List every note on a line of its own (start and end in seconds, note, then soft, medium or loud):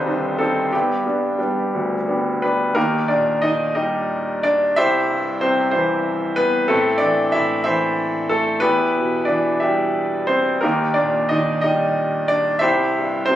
0.00 0.70 G1 medium
0.00 0.70 C2 medium
0.00 0.75 D#3 soft
0.00 0.06 G3 soft
0.00 0.07 C4 soft
0.00 0.75 D4 medium
0.00 0.08 D#4 soft
0.00 0.73 G4 soft
0.00 0.38 A4 medium
0.00 0.76 B4 medium
0.00 0.42 C5 medium
0.06 0.39 G3 soft
0.06 0.38 C4 soft
0.06 0.40 D#4 soft
0.38 0.67 G3 soft
0.38 0.71 C4 medium
0.38 0.68 D#4 soft
0.38 0.74 A4 medium
0.73 2.72 G2 soft
0.73 1.04 B3 soft
0.73 2.38 G4 medium
1.06 1.37 G3 soft
1.06 1.38 B3 soft
1.06 1.38 D4 soft
1.39 1.94 G3 soft
1.39 1.95 B3 soft
1.39 1.95 D4 soft
1.74 2.73 D2 soft
2.08 2.42 G3 soft
2.08 2.42 B3 soft
2.08 2.42 D4 soft
2.42 2.70 G3 soft
2.42 2.70 B3 soft
2.42 2.70 D4 soft
2.42 2.77 B4 medium
2.75 4.73 D#2 soft
2.75 3.07 A#3 medium
2.75 3.07 D#4 medium
2.75 3.07 G4 medium
2.75 3.10 A#4 medium
3.08 4.40 A#2 soft
3.08 3.41 D4 medium
3.08 3.44 D5 medium
3.42 4.73 D#3 soft
3.42 3.74 D#4 medium
3.42 3.73 D#5 medium
3.75 4.74 G3 soft
3.75 4.39 D#4 soft
3.75 4.39 G4 soft
3.75 4.45 D#5 medium
4.43 4.75 D4 medium
4.43 4.75 D5 medium
4.76 6.68 C2 medium
4.76 5.39 E4 medium
4.76 5.39 G4 medium
4.76 5.39 C5 medium
4.76 5.44 E5 medium
5.10 6.35 G2 soft
5.41 6.67 C3 soft
5.41 5.72 C4 medium
5.41 5.70 C5 medium
5.71 6.68 E3 soft
5.71 6.34 C4 soft
5.71 6.34 E4 soft
5.71 6.39 C5 medium
6.36 6.68 B3 medium
6.36 6.71 B4 medium
6.68 7.34 A2 medium
6.68 7.00 A3 medium
6.68 7.00 C4 medium
6.68 7.00 E4 medium
6.68 7.03 A4 medium
6.98 7.65 E3 soft
6.98 7.31 D4 medium
6.98 7.34 D5 medium
7.32 8.60 A2 soft
7.32 7.64 E4 medium
7.32 7.62 E5 medium
7.64 8.61 E3 soft
7.64 8.27 E4 medium
7.64 8.27 C5 medium
7.64 8.26 E5 medium
8.29 8.61 A3 medium
8.29 8.61 A4 medium
8.60 9.24 B3 medium
8.60 9.24 E4 medium
8.60 9.24 G4 medium
8.60 9.29 B4 medium
8.64 10.60 E2 medium
8.97 10.26 B2 soft
9.25 10.59 E3 soft
9.25 9.59 D4 medium
9.25 9.58 D5 medium
9.60 10.61 G3 soft
9.60 10.25 E4 soft
9.60 10.25 G4 soft
9.60 10.30 E5 medium
10.27 10.61 C4 medium
10.27 10.63 C5 medium
10.61 12.60 D#2 medium
10.61 10.95 A#3 medium
10.61 10.95 D#4 medium
10.61 10.95 G4 medium
10.61 10.97 A#4 medium
10.94 12.27 A#2 soft
10.94 11.28 D4 medium
10.94 11.31 D5 medium
11.29 12.60 D#3 soft
11.29 11.62 D#4 medium
11.29 11.60 D#5 medium
11.61 12.61 G3 soft
11.61 12.27 D#4 medium
11.61 12.27 G4 soft
11.61 12.25 D#5 medium
12.28 12.61 D4 medium
12.28 12.60 D5 medium
12.59 13.24 E4 medium
12.59 13.24 G4 medium
12.59 13.24 C5 medium
12.59 13.29 E5 medium
12.63 13.36 C2 medium
12.98 13.36 G2 soft
13.26 13.36 C4 medium
13.26 13.36 C5 medium
13.30 13.36 C3 medium